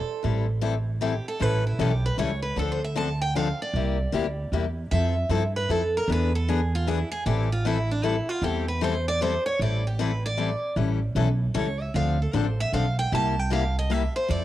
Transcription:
Already playing: A4
0.23 A1 E3 G3 C4 E4 A4
0.62 E3 G3 C4 E4 A4
1.01 E3 G3 C4 E4 G4 A4
1.28 A4
1.40 A1 E3 G3 C#4 E4 A4 B4
1.67 E4
1.79 B1 E3 G3 C#4 E4 G4 A4
2.06 B4
2.18 C#2 E3 G3 C#4 E4 A4 C#5
2.43 B4
2.56 D2 D3 F3 C4 D4 A4
2.72 C5
2.84 E5
2.96 D3 F3 C4 D4 A4 A5
3.21 G5
3.35 D3 F3 C4 D4 A4 F5
3.62 D5
3.73 C2 C3 G3 A#3 E4 G4
4.12 D2 C3 G3 A#3 E4 G4
4.52 E2 C3 G3 A#3 E4 G4
4.91 F2 F3 C4 E4 A4 E5
5.29 G2 F3 C4 E4 A4
5.56 B4
5.69 F2 F3 C4 E4 A4
5.97 A#4
6.08 E2 E3 B3 D4 G#4
6.12 B4
6.35 A4
6.49 E3 B3 D4 G#4
6.75 F4
6.87 E3 B3 D4 E4 G#4
7.12 G#4
7.26 A1 E3 G3 C4 E4 G4 A4
7.52 F4
7.65 E3 G3 C4 E4 A4
7.91 D4
8.03 E3 G3 C4 E4 A4
8.29 F4
8.42 E2 E3 G3 C4 E4 G4 A4
8.68 B4
8.81 E3 G3 C4 E4 A4 C5
9.08 D5
9.21 E3 G3 C4 E4 A4 C5
9.46 C#5
9.59 A1 E3 G3 C4 E4 A4 D5
9.87 G4
9.99 E3 G3 C4 E4 A4 B4
10.26 D5
10.37 E3 G3 C4 E4 A4
10.76 A1 E3 G3 C#4 E4 A4
11.15 B1 E3 G3 C#4 E4 A4
11.54 C#2 E3 G3 C#4 E4 A4 C#5
11.81 E5
11.94 D2 D3 F3 C4 D4 A4 F5
12.22 A4
12.33 A1 D3 F3 C4 D4 A4 C5
12.60 E5
12.72 B1 D3 F3 C4 D4 A4 F5
12.99 G5
13.12 C2 C3 G3 A#3 E4 G4 A5
13.39 G5
13.50 C3 G3 A#3 E4 G4 F5
13.79 D#5
13.90 C3 G3 A#3 E4 G4 E5
14.16 C5
14.29 F2 F3 C4 E4 A4 D5

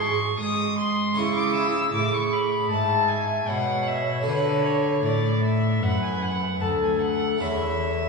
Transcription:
Already playing: G#2 D#4 F#4 G#4
0.02 C#6
0.39 G#3 D#6
0.79 C6
1.13 C#4 E4 G#4
1.17 C#3 E4 C#6
1.36 D6
1.56 E6
1.94 A2 G#4 D6
2.14 C#6
2.33 B5
2.70 G#2 E5 A5
3.09 G#5
3.48 B2 C#5 F#5
3.87 E5
4.21 A3 F#4
4.26 D3 B4
4.65 C#5
5.03 A2 D5
5.43 E5
5.81 F#2 B4 F#5
6.02 G#5
6.22 F#5
6.61 D2 A4 A5
6.82 G#5
7.02 F#5
7.37 A3 C#4 E4 C#5 E5
7.42 E2

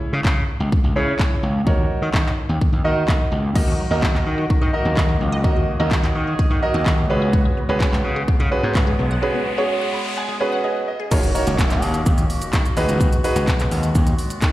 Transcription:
Already playing: C#4 E4 G#4 C#5
0.13 C#3
0.25 C#3, kick, clap
0.60 C#2
0.72 kick
0.84 C#2
0.96 C#3 C#4 E4 G#4 C#5
1.19 kick, clap
1.43 C#2
1.67 D#2 D#4 F#4 A#4 C#5, kick
2.02 D#3
2.14 D#3, kick, clap
2.26 clap
2.49 D#2
2.61 kick
2.73 D#2
2.84 D#3 D#4 F#4 A#4 D#5
3.08 kick, clap
3.32 C#2
3.55 D#2 D#3 F#3 A#3 D#4 F#4 A#4 D#5, kick, crash
3.67 F#4
3.79 F#3
3.91 D#2 D#4 F#4 A#4 D#5
4.03 F#4, kick, clap
4.14 D#2, clap
4.26 D#3
4.38 F#4
4.50 F#3, muted slap bass stroke, kick
4.61 D#3 D#5
4.73 D#4 F#4 A#4 D#5
4.85 D#2 F#3
4.97 D#2 D#5, kick, clap
5.09 F#4
5.21 C#2 F#3
5.32 D#5
5.44 D#2 D#4 F#4 G#4 A#4 D#5, kick
5.56 F#3
5.79 D#2 D#4 F#4 A#4 D#5
5.91 kick, clap
6.03 D#2 D#5, clap
6.15 D#3
6.39 D#5, muted slap bass stroke, kick
6.50 D#3 F#4
6.62 F#3 D#4 F#4 A#4 D#5
6.74 D#2 D#5
6.86 D#2 F#4, kick, clap
7.10 C#2 C#3 G#3 B3 C#4 F#4 G#4 B4
7.22 G#4
7.33 F#5, kick, riser
7.45 G#4
7.57 B3
7.69 C#2 C#4 F#4 G#4 B4
7.80 G#4, kick, clap
7.92 C#2, clap
8.04 C#3
8.16 G#4
8.28 B3, muted slap bass stroke, kick
8.40 C#3 F#5
8.51 C#4 F#4 G#4 B4
8.63 G#2 B3
8.75 C#2 F#5, kick, clap
8.87 G#4
8.99 B1 B3 G#4
9.11 F#5
9.22 C#4 F#4 G#4 B4
9.34 B3
9.58 C#4 F#4 G#4 C#5
9.81 F#5
9.93 B5
10.17 F#5 G#5
10.29 G#4
10.40 B3 C#4 F#4 G#4 B4
10.52 F#5
10.64 G#4 D#5
10.88 D#5
11.00 G#4
11.11 D#2 D#3 F#3 A#3 C#4 D#4 F#4 A#4 C#5, kick, crash, impact, shaker
11.23 closed hi-hat, shaker
11.35 D#4 F#4 A#4 C#5, open hi-hat, shaker
11.47 C#2, closed hi-hat, shaker
11.59 A#1, kick, clap, shaker
11.70 clap, closed hi-hat, shaker
11.82 D#2, open hi-hat, shaker
11.94 closed hi-hat, shaker
12.06 D#2, kick, shaker
12.18 closed hi-hat, shaker
12.30 open hi-hat, shaker
12.42 closed hi-hat, shaker
12.53 D#3, kick, clap, shaker
12.65 closed hi-hat, shaker
12.77 D#2 D#3 G#3 B3 D#4 F#4 G#4 B4, open hi-hat, shaker
12.89 C#2, closed hi-hat, shaker
13.00 D#2, kick, shaker
13.12 closed hi-hat, shaker
13.24 D#4 F#4 G#4 B4, open hi-hat, shaker
13.36 C#2, closed hi-hat, shaker
13.48 B1, kick, clap, shaker
13.60 clap, closed hi-hat, shaker
13.71 D#2, open hi-hat, shaker
13.83 closed hi-hat, shaker
13.95 D#2, kick, shaker
14.07 closed hi-hat, shaker
14.19 open hi-hat, shaker
14.30 closed hi-hat, shaker
14.42 D#3, kick, clap, shaker

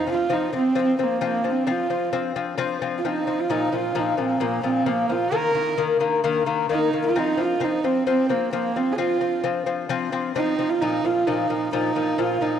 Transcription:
0.07 F3 C4
0.11 F4
0.29 F3 C4 D#4
0.52 F3 C4
0.75 F3 C4
0.82 C4
0.96 F3 C4
1.03 A#3
1.21 F3 C4
1.26 A#3
1.44 F3 C4
1.50 C4
1.67 F3 C4
1.71 F4
1.90 F3 C4
2.13 F3 C4
2.36 F3 C4
2.58 F3 C4
2.82 F3 C4
2.98 F4
3.05 F3 C4 D#4
3.27 F3 C4
3.40 F4
3.50 A#2 F3 D#4
3.72 A#2 F3 F4
3.95 A#2 F3
4.00 D#4
4.17 A#2 F3 C4
4.40 A#2 F3 A#3
4.63 A#2 F3 C4
4.86 A#2 F3 A#3
5.09 A#2 F3 F4
5.32 D#3 A#3 A#4
5.55 D#3 A#3
5.78 D#3 A#3
6.00 D#3 A#3
6.24 D#3 A#3
6.46 D#3 A#3
6.69 D#3 A#3 D#4
6.93 D#3 A#3
7.06 F4
7.16 F3 C4 D#4
7.37 F3 C4 F4
7.60 F3 C4
7.64 D#4
7.84 F3 C4
8.07 F3 C4
8.29 F3 A#3 C4
8.53 F3 A#3 C4
8.76 F3 C4
8.92 G#4
8.96 F3 C4 F4
9.21 F3 C4
9.44 F3 C4
9.66 F3 C4
9.89 F3 C4
10.12 F3 C4
10.36 F3 C4 D#4
10.59 F3 C4
10.70 F4
10.81 A#2 F3 D#4
11.04 A#2 F3 F4
11.27 A#2 F3 D#4
11.50 A#2 F3
11.73 A#2 F3 D#4
11.96 A#2 F3
12.18 A#2 F3 F4
12.41 A#2 F3 D#4

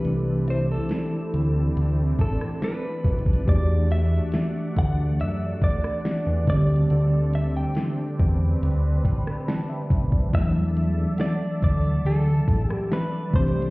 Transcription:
Already playing: E3 A3 C4 D4 E4 G4 A4 B4 D5
0.05 C2, closed hi-hat
0.48 C5 E5, closed hi-hat
0.72 A4
0.89 snare, closed hi-hat
1.34 D2 D4, closed hi-hat
1.76 D2, closed hi-hat
2.19 A1 A4 A5, kick, closed hi-hat
2.41 cross-stick
2.62 B4, snare, closed hi-hat
3.04 B1, kick, closed hi-hat
3.19 closed hi-hat
3.26 kick
3.33 closed hi-hat
3.45 E2 E3 A3 G4 F#5, kick, closed hi-hat
3.49 D4 F#4 D5
3.91 E5, closed hi-hat
4.32 snare, closed hi-hat
4.76 D2 F#5, kick, closed hi-hat
5.20 F#2 E5, closed hi-hat
5.62 D2 D5, kick, closed hi-hat
5.84 cross-stick
6.05 snare, closed hi-hat
6.27 E2
6.45 D2 D3 G3 A3 C4 A4, kick, closed hi-hat
6.50 C4 G4 D5
6.62 closed hi-hat
6.76 closed hi-hat
6.90 D2, closed hi-hat
7.33 E5, closed hi-hat
7.57 G5
7.75 snare, closed hi-hat
8.20 E2 B4, kick, closed hi-hat
8.62 D2, closed hi-hat
9.05 A1 G5, kick, closed hi-hat
9.27 cross-stick
9.31 B5
9.48 A5, snare, closed hi-hat
9.69 E5
9.90 B1, kick, closed hi-hat
10.12 kick
10.30 E2 E3 G3 A3 A4 D5 E5 A5, kick, closed hi-hat
10.35 F#3 D4 E5
10.77 closed hi-hat
11.18 D5 F#5, snare, closed hi-hat
11.62 D2 D5, kick, closed hi-hat
12.05 D2 A4, closed hi-hat
12.48 A1, kick, closed hi-hat
12.70 G4, cross-stick
12.92 B4, snare, closed hi-hat
13.31 C2 E3 A3 C4 A4 E5 C6, kick, closed hi-hat
13.36 D4 G4 C5
13.48 closed hi-hat
13.62 closed hi-hat

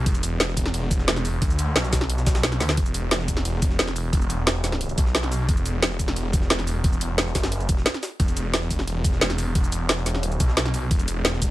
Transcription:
0.06 E1, kick, closed hi-hat, ride
0.15 ride, shaker
0.23 closed hi-hat, ride, shaker
0.40 snare, closed hi-hat, ride
0.48 snare
0.57 kick, closed hi-hat, ride, shaker
0.65 snare
0.74 closed hi-hat, ride
0.91 kick, closed hi-hat, ride, shaker
0.99 snare
1.08 snare, closed hi-hat, ride
1.16 snare, shaker
1.25 open hi-hat, ride, shaker
1.42 D2, kick, closed hi-hat, ride
1.50 shaker
1.59 closed hi-hat, ride, shaker
1.76 B1, snare, closed hi-hat, ride
1.84 snare, shaker
1.93 kick, snare, closed hi-hat, ride, shaker
2.01 snare
2.10 closed hi-hat, ride
2.18 snare, shaker
2.27 kick, snare, closed hi-hat, ride, shaker
2.35 snare, ride
2.43 snare, closed hi-hat, ride
2.52 snare, shaker
2.60 D2, snare, open hi-hat, ride, shaker
2.69 snare, ride
2.77 E1, kick, closed hi-hat, ride
2.86 ride, shaker
2.94 closed hi-hat, ride, shaker
3.11 snare, closed hi-hat, ride
3.20 snare
3.28 kick, closed hi-hat, ride, shaker
3.37 snare
3.45 closed hi-hat, ride
3.62 kick, closed hi-hat, ride, shaker
3.71 snare
3.79 snare, closed hi-hat, ride
3.88 snare, shaker
3.96 open hi-hat, ride, shaker
4.13 E1, kick, closed hi-hat, ride
4.21 shaker
4.30 closed hi-hat, ride, shaker
4.47 snare, closed hi-hat, ride
4.55 snare
4.64 snare, closed hi-hat, ride, shaker
4.72 snare
4.81 closed hi-hat, ride
4.89 ride, shaker
4.98 B1, kick, closed hi-hat, ride, shaker
5.06 snare
5.15 snare, closed hi-hat, ride
5.23 snare, shaker
5.32 open hi-hat, ride, shaker
5.49 E1, kick, closed hi-hat, ride
5.57 ride, shaker
5.66 closed hi-hat, ride, shaker
5.82 snare, closed hi-hat, ride
5.91 snare
5.99 kick, closed hi-hat, ride, shaker
6.08 snare
6.16 closed hi-hat, ride
6.33 kick, closed hi-hat, ride, shaker
6.42 snare
6.50 snare, closed hi-hat, ride
6.59 snare, shaker
6.67 open hi-hat, ride, shaker
6.84 E1, kick, closed hi-hat, ride
6.93 shaker
7.01 closed hi-hat, ride, shaker
7.18 snare, closed hi-hat, ride
7.27 snare
7.35 F#1, kick, snare, closed hi-hat, ride, shaker
7.43 snare, ride
7.52 closed hi-hat, ride
7.60 ride, shaker
7.69 E1, kick, closed hi-hat, ride, shaker
7.77 snare
7.86 snare, closed hi-hat, ride
7.94 snare, shaker
8.03 snare, open hi-hat, ride, shaker
8.20 E1, kick, closed hi-hat, ride
8.28 ride, shaker
8.37 closed hi-hat, ride, shaker
8.54 snare, closed hi-hat, ride
8.62 snare
8.71 kick, closed hi-hat, ride, shaker
8.79 snare
8.88 closed hi-hat, ride
9.04 kick, closed hi-hat, ride, shaker
9.13 snare
9.21 snare, closed hi-hat, ride
9.30 snare, shaker
9.38 open hi-hat, ride, shaker
9.55 E1, kick, closed hi-hat, ride
9.64 shaker
9.72 closed hi-hat, ride, shaker
9.89 snare, closed hi-hat, ride
9.98 snare
10.06 snare, closed hi-hat, ride, shaker
10.14 D#1, snare
10.23 closed hi-hat, ride
10.32 ride, shaker
10.40 B1, kick, closed hi-hat, ride, shaker
10.49 snare
10.57 snare, closed hi-hat, ride
10.65 snare, shaker
10.74 open hi-hat, ride, shaker
10.91 E1, kick, closed hi-hat, ride
10.99 ride, shaker
11.08 closed hi-hat, ride, shaker
11.25 snare, closed hi-hat, ride
11.33 snare
11.42 kick, closed hi-hat, ride, shaker

